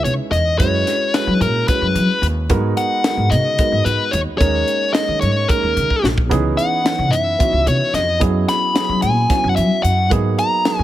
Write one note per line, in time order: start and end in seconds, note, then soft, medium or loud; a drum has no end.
0.00 0.57 G#3 medium
0.00 0.58 C#4 soft
0.00 0.59 D#4 soft
0.00 0.58 E4 medium
0.00 0.59 B4 medium
0.04 0.16 C#3 medium
0.04 0.12 C#5 medium
0.04 closed hi-hat medium
0.31 0.60 E2 medium
0.31 0.58 D#5 medium
0.31 closed hi-hat medium
0.59 0.81 F#2 medium
0.59 1.09 G#3 medium
0.59 1.09 C#4 medium
0.59 1.09 E4 medium
0.59 1.09 F#4 medium
0.59 1.10 B4 medium
0.59 1.15 C#5 medium
0.59 kick medium
0.59 closed hi-hat medium
0.87 snare soft
0.87 closed hi-hat medium
1.13 1.63 G#3 medium
1.13 1.64 C#4 medium
1.13 1.64 E4 medium
1.13 1.64 F#4 medium
1.13 1.39 B4 medium
1.13 1.64 C#5 medium
1.13 snare loud
1.13 closed hi-hat medium
1.27 1.42 F#3 medium
1.40 1.62 A#2 medium
1.40 1.67 A#4 medium
1.40 closed hi-hat medium
1.68 2.48 G#3 medium
1.68 2.50 C#4 medium
1.68 2.50 E4 medium
1.68 2.49 F#4 medium
1.68 2.26 B4 medium
1.68 2.51 B4 medium
1.68 kick medium
1.68 closed hi-hat medium
1.82 1.97 F#2 medium
1.95 2.06 F#3 medium
1.95 closed hi-hat medium
2.22 2.52 D#2 medium
2.22 closed hi-hat medium
2.49 2.72 G#2 loud
2.49 2.99 G#3 medium
2.49 3.00 B3 medium
2.49 3.00 D#4 medium
2.49 3.00 F#4 medium
2.49 3.00 A#4 loud
2.49 kick medium
2.49 closed hi-hat medium
2.77 3.33 F#5 loud
2.77 closed hi-hat medium
3.04 3.54 G#3 medium
3.04 3.54 B3 medium
3.04 3.55 D#4 medium
3.04 3.55 F#4 medium
3.04 3.55 A#4 medium
3.04 snare loud
3.04 closed hi-hat medium
3.17 3.33 G#2 medium
3.31 3.53 C#3 medium
3.31 3.87 D#5 medium
3.31 closed hi-hat medium
3.59 4.37 G#3 medium
3.59 4.41 B3 medium
3.59 4.39 D#4 medium
3.59 4.41 F#4 medium
3.59 4.39 A#4 medium
3.59 muted upright bass stroke soft
3.59 kick loud
3.59 closed hi-hat medium
3.72 3.83 G#2 medium
3.85 3.96 G#2 medium
3.85 4.14 B4 medium
3.85 closed hi-hat medium
4.11 4.24 D#2 medium
4.11 4.19 C#5 medium
4.11 closed hi-hat medium
4.38 4.62 D#2 medium
4.38 4.89 G#3 medium
4.38 4.89 A#3 medium
4.38 4.90 C#4 medium
4.38 4.90 D#4 medium
4.38 4.90 A#4 medium
4.38 4.93 C#5 medium
4.38 kick loud
4.38 closed hi-hat medium
4.68 closed hi-hat medium
4.93 5.44 G#3 medium
4.93 5.44 A#3 medium
4.93 5.44 C#4 medium
4.93 5.45 D#4 medium
4.93 5.44 G#4 medium
4.93 5.20 D#5 medium
4.93 snare loud
4.93 closed hi-hat medium
5.08 5.24 D#3 medium
5.21 5.44 G#2 medium
5.21 5.49 C#5 medium
5.21 closed hi-hat medium
5.48 6.31 G#3 medium
5.48 6.31 A#3 medium
5.48 6.29 C#4 soft
5.48 6.29 D#4 soft
5.48 6.06 A#4 medium
5.48 6.31 A#4 medium
5.48 muted upright bass stroke soft
5.48 kick loud
5.48 closed hi-hat medium
5.63 5.78 D#2 medium
5.76 5.87 D#3 medium
5.76 closed hi-hat medium
5.90 kick medium
6.04 6.31 A#1 medium
6.04 snare medium
6.18 kick medium
6.29 6.53 C#2 medium
6.29 6.80 E3 medium
6.29 6.80 B3 medium
6.29 6.80 C#4 medium
6.29 6.80 D#4 medium
6.29 6.81 G#4 medium
6.29 kick medium
6.29 closed hi-hat medium
6.57 7.14 F#5 loud
6.57 closed hi-hat medium
6.83 7.34 E3 medium
6.83 7.34 B3 medium
6.83 7.34 C#4 medium
6.83 7.35 D#4 medium
6.83 7.35 B4 medium
6.83 snare loud
6.83 closed hi-hat medium
6.99 7.12 C#3 medium
7.11 7.34 F#2 medium
7.11 7.68 E5 medium
7.11 closed hi-hat medium
7.38 8.21 E3 medium
7.38 8.19 B3 medium
7.38 8.19 C#4 medium
7.38 8.21 D#4 medium
7.38 8.21 F#4 medium
7.38 kick loud
7.38 closed hi-hat medium
7.53 7.68 C#2 medium
7.66 7.77 C#3 medium
7.66 7.93 C#5 medium
7.66 closed hi-hat medium
7.93 8.21 F2 medium
7.93 8.20 D#5 medium
7.93 snare soft
7.93 closed hi-hat medium
8.20 8.43 F#2 loud
8.20 8.70 F#3 medium
8.20 8.70 B3 medium
8.20 8.70 C#4 medium
8.20 8.71 E4 medium
8.20 8.71 G#4 medium
8.20 kick loud
8.20 closed hi-hat medium
8.49 9.02 B5 loud
8.49 snare soft
8.49 closed hi-hat medium
8.74 9.24 F#3 medium
8.74 9.25 B3 medium
8.74 9.25 C#4 medium
8.74 9.25 E4 medium
8.74 9.25 G#4 medium
8.74 snare loud
8.74 closed hi-hat medium
8.89 9.05 F#3 medium
9.02 9.24 A#2 medium
9.02 9.47 G#5 medium
9.02 closed hi-hat medium
9.29 10.08 F#3 medium
9.29 10.10 B3 medium
9.29 10.11 C#4 medium
9.29 10.11 E4 medium
9.29 10.12 F#4 medium
9.29 muted upright bass stroke soft
9.29 kick loud
9.29 snare soft
9.29 closed hi-hat medium
9.44 9.59 F#2 medium
9.49 9.56 F#5 medium
9.56 9.68 F#3 medium
9.56 9.83 E5 medium
9.56 closed hi-hat medium
9.83 10.11 F#2 medium
9.83 10.09 F#5 medium
9.83 closed hi-hat medium
10.10 10.33 G#2 medium
10.10 10.60 F#3 medium
10.10 10.60 A#3 medium
10.10 10.61 B3 medium
10.10 10.61 D#4 medium
10.10 10.61 G#4 medium
10.10 kick loud
10.10 closed hi-hat medium
10.39 10.83 A#5 loud
10.39 closed hi-hat medium
10.65 10.83 F#3 medium
10.65 10.83 A#3 medium
10.65 10.83 B3 medium
10.65 10.83 D#4 medium
10.65 10.83 G#4 medium
10.65 snare loud
10.65 closed hi-hat medium
10.79 10.83 G#2 medium